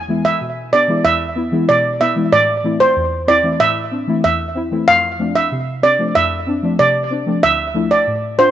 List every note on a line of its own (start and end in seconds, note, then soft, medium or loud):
0.00 0.25 E2 medium
0.08 0.21 E3 medium
0.08 0.22 G#3 medium
0.08 0.22 B3 medium
0.08 0.22 E4 medium
0.25 0.36 E5 medium
0.41 0.89 B2 medium
0.72 0.79 B3 medium
0.72 0.80 D4 medium
0.72 0.84 D5 medium
0.88 1.01 E3 medium
0.88 1.01 G#3 medium
0.88 1.02 B3 medium
0.88 1.02 E4 medium
1.05 1.52 E2 medium
1.05 1.50 E5 medium
1.36 1.43 B3 medium
1.36 1.44 E4 medium
1.52 1.65 E3 medium
1.52 1.65 G#3 medium
1.52 1.66 B3 medium
1.52 1.66 E4 medium
1.69 2.16 B2 medium
1.69 1.79 D5 medium
2.00 2.07 B3 medium
2.00 2.07 E4 medium
2.00 2.11 E5 medium
2.16 2.29 E3 medium
2.16 2.29 G#3 medium
2.16 2.29 B3 medium
2.16 2.30 E4 medium
2.32 2.80 A2 medium
2.32 2.43 D5 medium
2.64 2.77 E3 medium
2.64 2.77 A3 medium
2.64 2.77 C4 medium
2.64 2.78 E4 medium
2.80 2.91 C5 medium
2.96 3.44 E2 medium
3.27 3.34 C4 medium
3.27 3.35 E4 medium
3.27 3.39 D5 medium
3.43 3.56 E3 medium
3.43 3.57 A3 medium
3.43 3.57 C4 medium
3.43 3.57 E4 medium
3.60 4.08 A2 medium
3.60 4.05 E5 loud
3.91 3.98 C4 medium
3.91 3.99 D4 medium
4.07 4.20 E3 medium
4.07 4.21 A3 medium
4.07 4.21 C4 medium
4.07 4.21 E4 medium
4.24 4.72 E2 medium
4.24 4.69 E5 medium
4.55 4.62 C4 medium
4.55 4.63 E4 medium
4.71 4.84 E3 medium
4.71 4.85 A3 medium
4.71 4.85 C4 medium
4.71 4.85 E4 medium
4.88 5.35 F2 medium
4.88 4.98 F5 loud
5.19 5.32 F3 medium
5.19 5.32 A3 medium
5.19 5.33 C4 medium
5.19 5.33 D4 medium
5.36 5.46 E5 medium
5.52 5.99 C3 medium
5.83 5.89 C4 medium
5.83 5.90 D4 medium
5.83 5.94 D5 medium
5.99 6.12 F3 medium
5.99 6.12 A3 medium
5.99 6.12 C4 medium
5.99 6.13 D4 medium
6.15 6.63 F2 medium
6.15 6.60 E5 medium
6.47 6.53 C4 medium
6.47 6.54 D4 medium
6.63 6.76 F3 medium
6.63 6.76 A3 medium
6.63 6.76 C4 medium
6.63 6.77 D4 medium
6.79 7.27 C3 medium
6.79 7.24 D5 medium
7.10 7.17 C4 medium
7.10 7.18 D4 medium
7.26 7.40 F3 medium
7.26 7.40 A3 medium
7.26 7.40 C4 medium
7.26 7.40 D4 medium
7.43 7.91 D2 medium
7.43 7.54 E5 loud
7.74 7.87 F3 medium
7.74 7.88 A3 medium
7.74 7.88 D4 medium
7.74 7.88 E4 medium
7.91 8.02 D5 medium
8.07 8.51 A2 medium
8.38 8.45 D4 medium
8.38 8.46 F4 medium
8.38 8.49 C5 medium